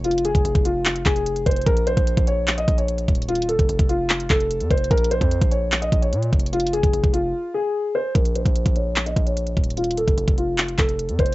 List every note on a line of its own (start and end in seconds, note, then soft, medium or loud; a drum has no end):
0.00 0.33 F1 loud
0.04 0.23 F4 medium
0.04 closed hi-hat medium
0.11 closed hi-hat medium
0.18 closed hi-hat medium
0.25 0.63 G#4 medium
0.25 closed hi-hat medium
0.35 0.44 F1 loud
0.35 kick loud
0.35 closed hi-hat medium
0.45 0.55 F1 loud
0.45 closed hi-hat medium
0.55 1.04 F1 loud
0.55 kick loud
0.55 closed hi-hat soft
0.65 1.03 F4 medium
0.65 closed hi-hat medium
0.65 open hi-hat medium
0.85 clap loud
0.85 closed hi-hat medium
0.96 closed hi-hat medium
1.06 1.45 F1 loud
1.06 1.44 G#4 medium
1.06 kick loud
1.06 clap loud
1.06 closed hi-hat medium
1.16 closed hi-hat medium
1.26 closed hi-hat medium
1.36 closed hi-hat medium
1.46 1.66 F1 loud
1.46 1.65 C5 medium
1.46 kick medium
1.46 closed hi-hat medium
1.51 closed hi-hat medium
1.56 closed hi-hat medium
1.61 closed hi-hat soft
1.66 1.96 A#1 loud
1.66 1.85 A#4 loud
1.66 kick loud
1.66 closed hi-hat medium
1.77 closed hi-hat medium
1.87 2.25 C5 medium
1.87 closed hi-hat medium
1.97 2.16 A#1 loud
1.97 kick loud
1.97 closed hi-hat medium
2.07 closed hi-hat medium
2.17 2.66 A#1 loud
2.17 kick loud
2.17 closed hi-hat medium
2.27 2.56 C#5 medium
2.27 closed hi-hat medium
2.47 clap loud
2.47 closed hi-hat medium
2.58 2.76 D#5 medium
2.58 closed hi-hat medium
2.68 3.07 A#1 loud
2.68 kick loud
2.68 closed hi-hat medium
2.78 3.26 C#5 medium
2.78 closed hi-hat medium
2.88 closed hi-hat medium
2.98 closed hi-hat medium
3.08 3.57 D#1 loud
3.08 kick medium
3.08 closed hi-hat soft
3.15 closed hi-hat medium
3.22 closed hi-hat medium
3.29 3.47 F4 medium
3.29 closed hi-hat medium
3.35 closed hi-hat medium
3.42 closed hi-hat medium
3.49 3.87 A4 medium
3.49 closed hi-hat medium
3.59 3.69 F1 loud
3.59 kick loud
3.59 closed hi-hat medium
3.69 3.79 F1 loud
3.69 closed hi-hat medium
3.79 4.28 F1 loud
3.79 kick loud
3.79 closed hi-hat medium
3.89 4.27 F4 medium
3.89 closed hi-hat medium
4.10 clap loud
4.10 closed hi-hat medium
4.20 closed hi-hat medium
4.30 4.62 F1 loud
4.30 4.68 A4 medium
4.30 kick loud
4.30 clap loud
4.30 closed hi-hat medium
4.40 closed hi-hat medium
4.51 closed hi-hat medium
4.60 4.70 F2 loud
4.60 closed hi-hat medium
4.71 4.90 F1 loud
4.71 4.89 C5 medium
4.71 kick medium
4.71 closed hi-hat soft
4.77 closed hi-hat medium
4.84 closed hi-hat medium
4.91 5.20 A#1 loud
4.91 5.09 A#4 loud
4.91 kick loud
4.91 closed hi-hat medium
4.98 closed hi-hat medium
5.04 closed hi-hat medium
5.11 5.49 C5 medium
5.11 closed hi-hat medium
5.21 5.41 F2 loud
5.21 kick loud
5.21 closed hi-hat medium
5.31 closed hi-hat medium
5.41 5.90 A#1 loud
5.41 kick loud
5.41 closed hi-hat medium
5.51 5.80 C#5 medium
5.51 closed hi-hat medium
5.72 clap loud
5.72 closed hi-hat medium
5.82 6.00 D#5 medium
5.82 closed hi-hat medium
5.92 6.14 A#1 loud
5.92 kick loud
5.92 closed hi-hat medium
6.02 6.50 C#5 medium
6.02 closed hi-hat medium
6.12 6.32 A#2 loud
6.12 closed hi-hat medium
6.23 closed hi-hat medium
6.33 6.81 F1 loud
6.33 kick medium
6.33 closed hi-hat soft
6.39 closed hi-hat medium
6.46 closed hi-hat medium
6.53 6.71 F4 medium
6.53 closed hi-hat medium
6.60 closed hi-hat medium
6.67 closed hi-hat medium
6.73 7.11 G#4 medium
6.73 closed hi-hat medium
6.83 6.93 F1 loud
6.83 kick loud
6.83 closed hi-hat medium
6.93 7.03 F1 loud
6.93 closed hi-hat medium
7.04 7.33 F1 loud
7.04 kick loud
7.04 closed hi-hat soft
7.13 7.52 F4 medium
7.13 closed hi-hat medium
7.13 open hi-hat medium
7.54 7.92 G#4 medium
7.95 8.13 C5 medium
8.15 8.44 A#1 loud
8.15 8.33 A#4 medium
8.15 kick loud
8.15 closed hi-hat medium
8.25 closed hi-hat medium
8.35 8.74 C5 medium
8.35 closed hi-hat medium
8.45 8.65 A#1 loud
8.45 kick medium
8.45 closed hi-hat medium
8.56 closed hi-hat medium
8.66 9.14 A#1 loud
8.66 kick loud
8.66 closed hi-hat medium
8.76 9.05 C#5 medium
8.76 closed hi-hat medium
8.96 clap loud
8.96 closed hi-hat medium
9.06 9.25 D#5 medium
9.06 closed hi-hat medium
9.16 9.55 A#1 loud
9.16 kick medium
9.16 closed hi-hat medium
9.27 9.74 C#5 medium
9.27 closed hi-hat medium
9.37 closed hi-hat medium
9.47 closed hi-hat medium
9.57 10.06 D#1 loud
9.57 kick medium
9.57 closed hi-hat soft
9.64 closed hi-hat medium
9.70 closed hi-hat medium
9.77 9.96 F4 medium
9.77 closed hi-hat medium
9.84 closed hi-hat medium
9.91 closed hi-hat medium
9.97 10.36 A4 medium
9.97 closed hi-hat medium
10.08 10.17 F1 loud
10.08 kick medium
10.08 closed hi-hat medium
10.18 10.27 F1 loud
10.18 closed hi-hat medium
10.28 10.77 F1 medium
10.28 kick loud
10.28 closed hi-hat medium
10.38 10.76 F4 medium
10.38 closed hi-hat medium
10.58 clap loud
10.58 closed hi-hat medium
10.69 closed hi-hat medium
10.78 11.10 F1 loud
10.78 11.17 A4 medium
10.78 kick loud
10.78 clap loud
10.78 closed hi-hat medium
10.89 closed hi-hat medium
10.99 closed hi-hat medium
11.09 11.19 F2 loud
11.09 closed hi-hat medium
11.19 11.35 F1 loud
11.19 11.35 C5 medium
11.19 kick medium
11.19 closed hi-hat soft
11.26 closed hi-hat soft